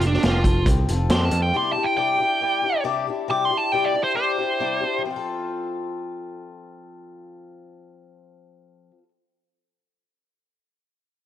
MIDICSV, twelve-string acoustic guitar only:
0, 0, Header, 1, 2, 480
1, 0, Start_track
1, 0, Key_signature, -1, "major"
1, 0, Tempo, 437637
1, 1692, Time_signature, 4, 2, 24, 8
1, 12348, End_track
2, 0, Start_track
2, 0, Title_t, "Twelve-string acoustic guitar"
2, 0, Program_c, 0, 25
2, 22, Note_on_c, 0, 69, 50
2, 37, Note_on_c, 0, 65, 46
2, 53, Note_on_c, 0, 60, 45
2, 256, Note_off_c, 0, 60, 0
2, 258, Note_off_c, 0, 69, 0
2, 263, Note_on_c, 0, 53, 65
2, 266, Note_off_c, 0, 65, 0
2, 270, Note_on_c, 0, 60, 69
2, 284, Note_on_c, 0, 65, 70
2, 289, Note_on_c, 0, 69, 64
2, 478, Note_off_c, 0, 69, 0
2, 491, Note_on_c, 0, 69, 38
2, 493, Note_off_c, 0, 65, 0
2, 499, Note_off_c, 0, 53, 0
2, 502, Note_off_c, 0, 60, 0
2, 506, Note_on_c, 0, 65, 38
2, 526, Note_on_c, 0, 60, 32
2, 724, Note_off_c, 0, 60, 0
2, 731, Note_on_c, 0, 53, 53
2, 733, Note_off_c, 0, 69, 0
2, 737, Note_on_c, 0, 60, 58
2, 740, Note_off_c, 0, 65, 0
2, 754, Note_on_c, 0, 65, 56
2, 758, Note_on_c, 0, 69, 52
2, 969, Note_off_c, 0, 69, 0
2, 972, Note_off_c, 0, 53, 0
2, 975, Note_off_c, 0, 60, 0
2, 981, Note_off_c, 0, 65, 0
2, 983, Note_on_c, 0, 69, 55
2, 994, Note_on_c, 0, 65, 55
2, 1012, Note_on_c, 0, 60, 43
2, 1197, Note_off_c, 0, 60, 0
2, 1208, Note_off_c, 0, 65, 0
2, 1210, Note_on_c, 0, 60, 75
2, 1211, Note_on_c, 0, 53, 60
2, 1218, Note_off_c, 0, 69, 0
2, 1222, Note_on_c, 0, 65, 82
2, 1233, Note_on_c, 0, 69, 86
2, 1429, Note_off_c, 0, 69, 0
2, 1442, Note_on_c, 0, 69, 40
2, 1444, Note_off_c, 0, 65, 0
2, 1451, Note_off_c, 0, 60, 0
2, 1452, Note_off_c, 0, 53, 0
2, 1458, Note_on_c, 0, 65, 39
2, 1473, Note_on_c, 0, 60, 35
2, 1681, Note_on_c, 0, 48, 65
2, 1685, Note_off_c, 0, 60, 0
2, 1687, Note_off_c, 0, 69, 0
2, 1687, Note_on_c, 0, 55, 71
2, 1690, Note_on_c, 0, 62, 81
2, 1695, Note_off_c, 0, 65, 0
2, 1704, Note_on_c, 0, 64, 81
2, 1708, Note_on_c, 0, 67, 71
2, 1914, Note_off_c, 0, 67, 0
2, 1926, Note_off_c, 0, 48, 0
2, 1928, Note_on_c, 0, 67, 42
2, 1929, Note_off_c, 0, 55, 0
2, 1930, Note_off_c, 0, 64, 0
2, 1931, Note_off_c, 0, 62, 0
2, 1943, Note_on_c, 0, 64, 38
2, 1956, Note_on_c, 0, 62, 41
2, 2151, Note_off_c, 0, 62, 0
2, 2152, Note_on_c, 0, 48, 63
2, 2155, Note_off_c, 0, 64, 0
2, 2160, Note_on_c, 0, 55, 67
2, 2165, Note_off_c, 0, 67, 0
2, 2165, Note_on_c, 0, 62, 68
2, 2169, Note_on_c, 0, 64, 73
2, 2178, Note_on_c, 0, 67, 68
2, 2381, Note_off_c, 0, 67, 0
2, 2394, Note_on_c, 0, 67, 35
2, 2402, Note_off_c, 0, 48, 0
2, 2402, Note_off_c, 0, 64, 0
2, 2406, Note_off_c, 0, 55, 0
2, 2408, Note_off_c, 0, 62, 0
2, 2415, Note_on_c, 0, 64, 39
2, 2434, Note_on_c, 0, 62, 32
2, 2632, Note_off_c, 0, 62, 0
2, 2639, Note_off_c, 0, 64, 0
2, 2641, Note_on_c, 0, 55, 51
2, 2643, Note_off_c, 0, 67, 0
2, 2645, Note_on_c, 0, 62, 53
2, 2652, Note_on_c, 0, 64, 52
2, 2664, Note_on_c, 0, 67, 56
2, 2860, Note_off_c, 0, 67, 0
2, 2873, Note_on_c, 0, 67, 46
2, 2878, Note_off_c, 0, 64, 0
2, 2886, Note_off_c, 0, 55, 0
2, 2888, Note_off_c, 0, 62, 0
2, 2891, Note_on_c, 0, 64, 44
2, 2914, Note_on_c, 0, 62, 45
2, 3109, Note_off_c, 0, 62, 0
2, 3110, Note_off_c, 0, 64, 0
2, 3112, Note_on_c, 0, 48, 67
2, 3118, Note_on_c, 0, 55, 73
2, 3122, Note_off_c, 0, 67, 0
2, 3123, Note_on_c, 0, 62, 89
2, 3123, Note_on_c, 0, 64, 81
2, 3137, Note_on_c, 0, 67, 83
2, 3354, Note_off_c, 0, 67, 0
2, 3361, Note_off_c, 0, 48, 0
2, 3364, Note_off_c, 0, 55, 0
2, 3367, Note_off_c, 0, 62, 0
2, 3367, Note_off_c, 0, 64, 0
2, 3367, Note_on_c, 0, 67, 43
2, 3384, Note_on_c, 0, 64, 42
2, 3395, Note_on_c, 0, 62, 42
2, 3598, Note_off_c, 0, 62, 0
2, 3598, Note_on_c, 0, 48, 67
2, 3606, Note_off_c, 0, 67, 0
2, 3607, Note_on_c, 0, 55, 53
2, 3609, Note_off_c, 0, 64, 0
2, 3612, Note_on_c, 0, 62, 65
2, 3619, Note_on_c, 0, 67, 74
2, 3623, Note_on_c, 0, 64, 71
2, 3833, Note_off_c, 0, 67, 0
2, 3845, Note_off_c, 0, 48, 0
2, 3846, Note_on_c, 0, 67, 47
2, 3849, Note_off_c, 0, 55, 0
2, 3851, Note_off_c, 0, 62, 0
2, 3851, Note_off_c, 0, 64, 0
2, 3864, Note_on_c, 0, 64, 46
2, 3880, Note_on_c, 0, 62, 40
2, 4082, Note_off_c, 0, 62, 0
2, 4084, Note_on_c, 0, 48, 64
2, 4088, Note_off_c, 0, 67, 0
2, 4091, Note_off_c, 0, 64, 0
2, 4093, Note_on_c, 0, 55, 64
2, 4095, Note_on_c, 0, 62, 56
2, 4104, Note_on_c, 0, 64, 63
2, 4109, Note_on_c, 0, 67, 66
2, 4289, Note_off_c, 0, 67, 0
2, 4302, Note_on_c, 0, 67, 35
2, 4310, Note_off_c, 0, 64, 0
2, 4323, Note_on_c, 0, 64, 36
2, 4328, Note_off_c, 0, 48, 0
2, 4328, Note_off_c, 0, 62, 0
2, 4332, Note_off_c, 0, 55, 0
2, 4341, Note_on_c, 0, 62, 31
2, 4544, Note_on_c, 0, 55, 53
2, 4546, Note_off_c, 0, 62, 0
2, 4553, Note_off_c, 0, 64, 0
2, 4557, Note_off_c, 0, 67, 0
2, 4559, Note_on_c, 0, 62, 50
2, 4567, Note_on_c, 0, 64, 50
2, 4579, Note_on_c, 0, 67, 50
2, 4790, Note_off_c, 0, 67, 0
2, 4798, Note_off_c, 0, 55, 0
2, 4804, Note_on_c, 0, 67, 48
2, 4805, Note_off_c, 0, 62, 0
2, 4806, Note_off_c, 0, 64, 0
2, 4819, Note_on_c, 0, 64, 40
2, 4832, Note_on_c, 0, 62, 37
2, 5039, Note_off_c, 0, 62, 0
2, 5043, Note_on_c, 0, 48, 57
2, 5044, Note_off_c, 0, 67, 0
2, 5045, Note_off_c, 0, 64, 0
2, 5045, Note_on_c, 0, 55, 55
2, 5053, Note_on_c, 0, 62, 61
2, 5057, Note_on_c, 0, 67, 66
2, 5058, Note_on_c, 0, 64, 61
2, 5257, Note_off_c, 0, 67, 0
2, 5270, Note_on_c, 0, 67, 47
2, 5271, Note_off_c, 0, 64, 0
2, 5285, Note_on_c, 0, 64, 34
2, 5286, Note_off_c, 0, 62, 0
2, 5287, Note_off_c, 0, 48, 0
2, 5288, Note_off_c, 0, 55, 0
2, 5299, Note_on_c, 0, 62, 40
2, 5467, Note_on_c, 0, 53, 55
2, 5521, Note_off_c, 0, 67, 0
2, 5528, Note_off_c, 0, 64, 0
2, 5536, Note_off_c, 0, 62, 0
2, 5543, Note_on_c, 0, 60, 62
2, 5598, Note_on_c, 0, 65, 59
2, 5660, Note_on_c, 0, 69, 72
2, 9771, Note_off_c, 0, 53, 0
2, 9848, Note_off_c, 0, 60, 0
2, 9902, Note_off_c, 0, 65, 0
2, 9964, Note_off_c, 0, 69, 0
2, 12348, End_track
0, 0, End_of_file